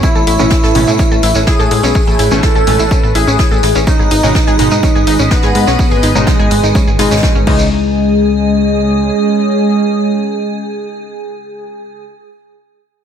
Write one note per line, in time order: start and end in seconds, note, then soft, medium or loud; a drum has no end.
0.00 3.83 A3 medium
0.00 0.07 C#4 medium
0.00 3.83 E4 medium
0.00 1.38 E4 loud
0.00 1.93 B4 medium
0.00 3.83 C#5 medium
0.00 0.07 C#5 medium
0.00 1.38 E5 loud
0.00 kick loud
0.00 closed hi-hat loud
0.00 shekere medium
0.15 0.25 A1 medium
0.15 0.25 A4 medium
0.15 0.25 A5 medium
0.15 shekere soft
0.27 0.37 A1 loud
0.27 0.34 E4 loud
0.27 0.34 E5 medium
0.27 closed hi-hat medium
0.27 open hi-hat loud
0.39 0.49 A1 loud
0.39 0.51 B2 medium
0.39 0.52 A3 medium
0.39 0.46 C#4 medium
0.39 0.51 C#4 loud
0.39 0.46 C#5 medium
0.39 closed hi-hat soft
0.39 shekere medium
0.50 0.55 E4 medium
0.50 0.55 E5 medium
0.50 kick loud
0.50 snare loud
0.50 closed hi-hat loud
0.50 shekere medium
0.63 0.73 A1 medium
0.63 0.73 A4 loud
0.63 0.73 A5 medium
0.63 snare medium
0.63 shekere soft
0.75 0.85 A1 loud
0.75 0.95 B2 loud
0.75 0.85 G#3 medium
0.75 0.95 A3 medium
0.75 0.95 C#4 loud
0.75 0.85 G#4 medium
0.75 closed hi-hat medium
0.75 open hi-hat medium
0.87 0.97 A2 medium
0.87 0.91 E4 medium
0.87 0.91 E5 medium
0.87 closed hi-hat soft
0.87 shekere medium
0.99 1.06 C#4 medium
0.99 1.06 C#5 medium
0.99 kick loud
0.99 closed hi-hat medium
0.99 shekere medium
1.11 1.21 A1 medium
1.11 1.21 A4 medium
1.11 1.21 A5 medium
1.11 shekere soft
1.23 1.33 A1 loud
1.23 1.30 E4 loud
1.23 1.30 E5 medium
1.23 snare medium
1.23 closed hi-hat medium
1.23 open hi-hat loud
1.35 1.45 A1 medium
1.35 1.42 C#4 medium
1.35 1.42 C#5 medium
1.35 closed hi-hat soft
1.35 shekere medium
1.47 1.51 E4 medium
1.47 2.34 G#4 loud
1.47 1.51 E5 medium
1.47 2.34 G#5 loud
1.47 kick loud
1.47 snare loud
1.47 closed hi-hat medium
1.47 shekere medium
1.59 1.69 A2 medium
1.59 1.69 A4 loud
1.59 1.69 A5 medium
1.59 snare medium
1.59 shekere soft
1.71 1.81 A2 loud
1.71 1.81 G#3 medium
1.71 1.81 G#4 medium
1.71 closed hi-hat medium
1.71 open hi-hat medium
1.83 1.93 B1 medium
1.83 1.90 C#4 loud
1.83 1.90 C#5 medium
1.83 snare medium
1.83 shekere medium
1.95 1.99 C#4 medium
1.95 3.85 B4 medium
1.95 1.99 C#5 medium
1.95 kick loud
1.95 open hi-hat medium
1.95 shekere medium
2.07 2.17 A1 medium
2.07 2.17 A4 medium
2.07 2.17 A5 medium
2.07 shekere soft
2.19 2.29 A1 loud
2.19 2.26 E4 loud
2.19 2.26 E5 medium
2.19 snare soft
2.19 closed hi-hat medium
2.19 open hi-hat loud
2.31 2.41 A1 loud
2.31 2.64 B2 medium
2.31 2.64 A3 medium
2.31 2.64 C#4 loud
2.31 2.38 C#4 medium
2.31 2.38 C#5 medium
2.31 shekere medium
2.43 2.47 E4 medium
2.43 3.06 A4 medium
2.43 2.47 E5 medium
2.43 3.06 A5 medium
2.43 kick loud
2.43 snare loud
2.43 closed hi-hat loud
2.43 shekere medium
2.55 2.65 A1 medium
2.55 2.65 A4 loud
2.55 2.65 A5 medium
2.55 shekere soft
2.67 2.77 A1 loud
2.67 3.86 B2 medium
2.67 2.77 G#3 medium
2.67 3.86 A3 medium
2.67 3.86 C#4 medium
2.67 2.77 G#4 medium
2.67 closed hi-hat medium
2.67 open hi-hat medium
2.79 2.89 A1 medium
2.79 2.83 E4 medium
2.79 2.83 E5 medium
2.79 shekere medium
2.91 2.98 C#4 medium
2.91 2.98 C#5 medium
2.91 kick loud
2.91 closed hi-hat medium
2.91 shekere medium
3.03 3.13 A1 medium
3.03 3.13 A4 medium
3.03 3.13 A5 medium
3.03 shekere soft
3.15 3.25 A1 loud
3.15 3.22 E4 loud
3.15 3.78 G#4 loud
3.15 3.22 E5 medium
3.15 3.78 G#5 medium
3.15 closed hi-hat medium
3.15 open hi-hat loud
3.27 3.37 A1 medium
3.27 3.34 C#4 medium
3.27 3.34 C#5 medium
3.27 closed hi-hat soft
3.27 shekere medium
3.39 3.43 E4 medium
3.39 3.43 E5 medium
3.39 kick loud
3.39 snare loud
3.39 closed hi-hat medium
3.39 shekere medium
3.51 3.61 A1 medium
3.51 3.61 A4 loud
3.51 3.61 A5 medium
3.51 shekere soft
3.63 3.73 A1 loud
3.63 3.73 G#3 medium
3.63 3.73 G#4 medium
3.63 snare loud
3.63 closed hi-hat medium
3.63 open hi-hat medium
3.75 3.85 A1 medium
3.75 3.82 C#4 loud
3.75 3.82 C#5 medium
3.75 shekere medium
3.87 7.43 G#3 medium
3.87 3.91 C#4 medium
3.87 5.22 D#4 loud
3.87 7.43 G#4 medium
3.87 7.43 B4 medium
3.87 3.91 C#5 medium
3.87 5.22 D#5 loud
3.87 7.43 D#5 medium
3.87 kick loud
3.87 closed hi-hat medium
3.87 shekere medium
3.99 4.09 G#1 medium
3.99 4.09 G#4 medium
3.99 4.09 G#5 medium
3.99 shekere soft
4.11 4.21 G#1 loud
4.11 4.18 D#4 loud
4.11 4.18 D#5 medium
4.11 closed hi-hat medium
4.11 open hi-hat loud
4.23 4.33 G#1 medium
4.23 4.35 B2 medium
4.23 4.36 G#3 medium
4.23 4.30 C#4 medium
4.23 4.36 D#4 loud
4.23 4.30 C#5 medium
4.23 closed hi-hat soft
4.23 shekere medium
4.35 4.39 D#4 medium
4.35 4.39 D#5 medium
4.35 kick loud
4.35 snare loud
4.35 closed hi-hat medium
4.35 shekere medium
4.47 4.57 G#1 loud
4.47 4.57 G#4 loud
4.47 4.57 G#5 medium
4.47 snare medium
4.47 shekere soft
4.59 4.69 G#1 loud
4.59 4.79 B2 medium
4.59 4.69 G#3 medium
4.59 4.79 G#3 medium
4.59 4.79 D#4 loud
4.59 4.69 G#4 medium
4.59 closed hi-hat medium
4.59 open hi-hat loud
4.71 4.81 G#2 medium
4.71 4.75 D#4 medium
4.71 4.75 D#5 medium
4.71 closed hi-hat soft
4.71 shekere medium
4.83 4.90 C#4 medium
4.83 4.90 C#5 medium
4.83 kick loud
4.83 closed hi-hat medium
4.83 shekere medium
4.95 5.05 G#1 medium
4.95 5.05 G#4 medium
4.95 5.05 G#5 medium
4.95 shekere soft
5.07 5.17 G#1 loud
5.07 5.14 D#4 loud
5.07 5.14 D#5 medium
5.07 open hi-hat loud
5.19 5.29 G#1 medium
5.19 5.26 C#4 medium
5.19 5.26 C#5 medium
5.19 shekere medium
5.31 6.18 B3 loud
5.31 5.35 D#4 medium
5.31 6.18 B4 loud
5.31 5.35 D#5 medium
5.31 kick loud
5.31 snare loud
5.31 closed hi-hat medium
5.31 shekere medium
5.42 5.53 G#2 medium
5.42 5.53 G#4 loud
5.42 5.53 G#5 medium
5.42 snare medium
5.42 shekere soft
5.55 5.65 G#2 loud
5.55 5.65 G#3 medium
5.55 5.65 G#4 medium
5.55 closed hi-hat medium
5.55 open hi-hat medium
5.67 5.77 B1 medium
5.67 5.74 C#4 loud
5.67 5.74 C#5 medium
5.67 snare medium
5.67 shekere medium
5.79 5.83 C#4 medium
5.79 5.83 C#5 medium
5.79 kick loud
5.79 open hi-hat medium
5.79 shekere medium
5.91 6.01 G#1 medium
5.91 6.01 G#4 medium
5.91 6.01 G#5 medium
5.91 shekere soft
6.03 6.13 G#1 loud
6.03 6.10 D#4 loud
6.03 6.10 D#5 medium
6.03 snare soft
6.03 closed hi-hat medium
6.03 open hi-hat loud
6.15 6.25 G#1 loud
6.15 6.48 B2 medium
6.15 6.48 G#3 medium
6.15 6.22 C#4 medium
6.15 6.48 D#4 loud
6.15 6.22 C#5 medium
6.15 shekere medium
6.27 6.90 G#3 loud
6.27 6.31 D#4 medium
6.27 6.90 G#4 loud
6.27 6.31 D#5 medium
6.27 kick loud
6.27 snare loud
6.27 closed hi-hat medium
6.27 shekere medium
6.39 6.49 G#1 medium
6.39 6.49 G#4 loud
6.39 6.49 G#5 medium
6.39 shekere soft
6.51 6.61 G#1 loud
6.51 6.61 G#3 medium
6.51 6.61 G#4 medium
6.51 closed hi-hat medium
6.51 open hi-hat loud
6.63 6.73 G#1 medium
6.63 6.67 D#4 medium
6.63 6.67 D#5 medium
6.63 shekere medium
6.75 6.82 C#4 medium
6.75 6.82 C#5 medium
6.75 kick loud
6.75 closed hi-hat medium
6.75 shekere medium
6.87 6.97 G#1 medium
6.87 6.97 G#4 medium
6.87 6.97 G#5 medium
6.87 shekere soft
6.99 7.09 G#1 loud
6.99 7.47 B2 medium
6.99 7.47 G#3 medium
6.99 7.46 G#3 loud
6.99 7.46 D#4 medium
6.99 7.46 G#4 medium
6.99 7.09 G#4 medium
6.99 7.09 G#5 medium
6.99 snare loud
6.99 closed hi-hat medium
6.99 open hi-hat loud
7.11 7.21 G#1 medium
7.11 7.21 C#4 medium
7.11 7.21 C#5 medium
7.11 snare medium
7.11 closed hi-hat medium
7.11 shekere medium
7.17 snare medium
7.17 closed hi-hat medium
7.23 7.30 C#4 medium
7.23 7.30 C#5 medium
7.23 kick loud
7.23 snare loud
7.23 closed hi-hat medium
7.23 shekere medium
7.35 7.45 G#1 medium
7.35 7.45 C#4 loud
7.35 7.45 C#5 medium
7.35 shekere soft
7.47 9.11 C#2 loud
7.47 12.05 C#3 medium
7.47 12.05 E3 medium
7.47 12.05 G#3 loud
7.47 7.92 C#4 medium
7.47 12.05 C#4 medium
7.47 12.05 D#4 medium
7.47 12.05 G#4 loud
7.47 12.05 G#4 medium
7.47 12.05 D#5 medium
7.47 kick loud
7.47 crash medium
7.59 shekere medium